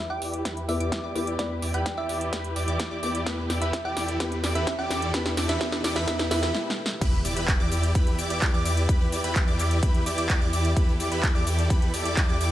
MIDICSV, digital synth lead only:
0, 0, Header, 1, 2, 480
1, 0, Start_track
1, 0, Key_signature, 1, "minor"
1, 0, Tempo, 468750
1, 1423, Time_signature, 4, 2, 24, 8
1, 12815, End_track
2, 0, Start_track
2, 0, Title_t, "Digital synth lead"
2, 0, Program_c, 0, 84
2, 101, Note_on_c, 0, 86, 92
2, 204, Note_off_c, 0, 86, 0
2, 221, Note_on_c, 0, 86, 76
2, 433, Note_off_c, 0, 86, 0
2, 461, Note_on_c, 0, 83, 83
2, 673, Note_off_c, 0, 83, 0
2, 701, Note_on_c, 0, 86, 92
2, 804, Note_off_c, 0, 86, 0
2, 822, Note_on_c, 0, 86, 98
2, 1034, Note_off_c, 0, 86, 0
2, 1062, Note_on_c, 0, 86, 93
2, 1154, Note_off_c, 0, 86, 0
2, 1182, Note_on_c, 0, 86, 101
2, 1387, Note_off_c, 0, 86, 0
2, 1422, Note_on_c, 0, 83, 87
2, 1592, Note_off_c, 0, 83, 0
2, 1662, Note_on_c, 0, 86, 83
2, 1754, Note_off_c, 0, 86, 0
2, 1781, Note_on_c, 0, 83, 90
2, 1952, Note_off_c, 0, 83, 0
2, 2021, Note_on_c, 0, 86, 92
2, 2124, Note_off_c, 0, 86, 0
2, 2142, Note_on_c, 0, 86, 80
2, 2354, Note_off_c, 0, 86, 0
2, 2381, Note_on_c, 0, 83, 84
2, 2593, Note_off_c, 0, 83, 0
2, 2621, Note_on_c, 0, 86, 91
2, 2724, Note_off_c, 0, 86, 0
2, 2742, Note_on_c, 0, 86, 102
2, 2954, Note_off_c, 0, 86, 0
2, 2982, Note_on_c, 0, 86, 91
2, 3074, Note_off_c, 0, 86, 0
2, 3102, Note_on_c, 0, 86, 110
2, 3307, Note_off_c, 0, 86, 0
2, 3343, Note_on_c, 0, 83, 76
2, 3512, Note_off_c, 0, 83, 0
2, 3583, Note_on_c, 0, 86, 81
2, 3674, Note_off_c, 0, 86, 0
2, 3702, Note_on_c, 0, 83, 84
2, 3872, Note_off_c, 0, 83, 0
2, 3943, Note_on_c, 0, 86, 91
2, 4045, Note_off_c, 0, 86, 0
2, 4063, Note_on_c, 0, 86, 70
2, 4274, Note_off_c, 0, 86, 0
2, 4303, Note_on_c, 0, 83, 77
2, 4473, Note_off_c, 0, 83, 0
2, 4542, Note_on_c, 0, 86, 82
2, 4634, Note_off_c, 0, 86, 0
2, 4662, Note_on_c, 0, 83, 89
2, 4832, Note_off_c, 0, 83, 0
2, 4901, Note_on_c, 0, 86, 90
2, 5004, Note_off_c, 0, 86, 0
2, 5023, Note_on_c, 0, 86, 81
2, 5234, Note_off_c, 0, 86, 0
2, 5262, Note_on_c, 0, 83, 80
2, 5432, Note_off_c, 0, 83, 0
2, 5502, Note_on_c, 0, 86, 86
2, 5594, Note_off_c, 0, 86, 0
2, 5622, Note_on_c, 0, 83, 93
2, 5724, Note_off_c, 0, 83, 0
2, 5742, Note_on_c, 0, 83, 83
2, 5912, Note_off_c, 0, 83, 0
2, 5981, Note_on_c, 0, 86, 84
2, 6074, Note_off_c, 0, 86, 0
2, 6103, Note_on_c, 0, 83, 95
2, 6204, Note_off_c, 0, 83, 0
2, 6220, Note_on_c, 0, 83, 83
2, 6391, Note_off_c, 0, 83, 0
2, 6462, Note_on_c, 0, 83, 85
2, 6632, Note_off_c, 0, 83, 0
2, 7183, Note_on_c, 0, 83, 90
2, 7353, Note_off_c, 0, 83, 0
2, 7423, Note_on_c, 0, 86, 94
2, 7514, Note_off_c, 0, 86, 0
2, 7543, Note_on_c, 0, 83, 96
2, 7712, Note_off_c, 0, 83, 0
2, 7783, Note_on_c, 0, 86, 101
2, 7885, Note_off_c, 0, 86, 0
2, 7902, Note_on_c, 0, 86, 80
2, 8114, Note_off_c, 0, 86, 0
2, 8142, Note_on_c, 0, 83, 89
2, 8354, Note_off_c, 0, 83, 0
2, 8382, Note_on_c, 0, 86, 98
2, 8485, Note_off_c, 0, 86, 0
2, 8501, Note_on_c, 0, 86, 108
2, 8713, Note_off_c, 0, 86, 0
2, 8742, Note_on_c, 0, 86, 100
2, 8834, Note_off_c, 0, 86, 0
2, 8862, Note_on_c, 0, 86, 107
2, 9066, Note_off_c, 0, 86, 0
2, 9103, Note_on_c, 0, 83, 88
2, 9272, Note_off_c, 0, 83, 0
2, 9343, Note_on_c, 0, 86, 87
2, 9434, Note_off_c, 0, 86, 0
2, 9464, Note_on_c, 0, 83, 96
2, 9633, Note_off_c, 0, 83, 0
2, 9704, Note_on_c, 0, 86, 96
2, 9806, Note_off_c, 0, 86, 0
2, 9824, Note_on_c, 0, 86, 84
2, 10035, Note_off_c, 0, 86, 0
2, 10064, Note_on_c, 0, 83, 86
2, 10275, Note_off_c, 0, 83, 0
2, 10304, Note_on_c, 0, 86, 90
2, 10405, Note_off_c, 0, 86, 0
2, 10424, Note_on_c, 0, 86, 108
2, 10635, Note_off_c, 0, 86, 0
2, 10664, Note_on_c, 0, 86, 93
2, 10755, Note_off_c, 0, 86, 0
2, 10784, Note_on_c, 0, 86, 108
2, 10987, Note_off_c, 0, 86, 0
2, 11023, Note_on_c, 0, 83, 88
2, 11193, Note_off_c, 0, 83, 0
2, 11263, Note_on_c, 0, 86, 85
2, 11354, Note_off_c, 0, 86, 0
2, 11383, Note_on_c, 0, 83, 93
2, 11553, Note_off_c, 0, 83, 0
2, 11623, Note_on_c, 0, 86, 102
2, 11725, Note_off_c, 0, 86, 0
2, 11742, Note_on_c, 0, 86, 81
2, 11954, Note_off_c, 0, 86, 0
2, 11983, Note_on_c, 0, 83, 91
2, 12194, Note_off_c, 0, 83, 0
2, 12223, Note_on_c, 0, 86, 91
2, 12325, Note_off_c, 0, 86, 0
2, 12342, Note_on_c, 0, 86, 109
2, 12554, Note_off_c, 0, 86, 0
2, 12583, Note_on_c, 0, 86, 100
2, 12674, Note_off_c, 0, 86, 0
2, 12703, Note_on_c, 0, 86, 113
2, 12815, Note_off_c, 0, 86, 0
2, 12815, End_track
0, 0, End_of_file